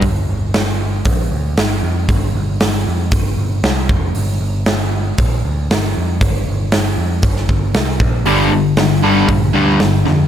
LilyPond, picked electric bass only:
\new Staff \with { instrumentName = "Picked electric bass" } { \clef bass \time 4/4 \key g \minor \tempo 4 = 117 g,,8 g,,8 g,,4 bes,,8 d,8 g,,8 f,8 | g,,8 g,,8 g,,8 f,8 g,,8 g,,8 c,8 f,,8 | g,,8 g,,8 g,,4 bes,,8 d,8 g,,8 f,8 | g,,8 g,,8 g,,8 f,8 g,,8 g,,8 c,8 bes,,8 |
g,,8 g,,8 g,,4 bes,,8 d,8 g,,8 f,8 | }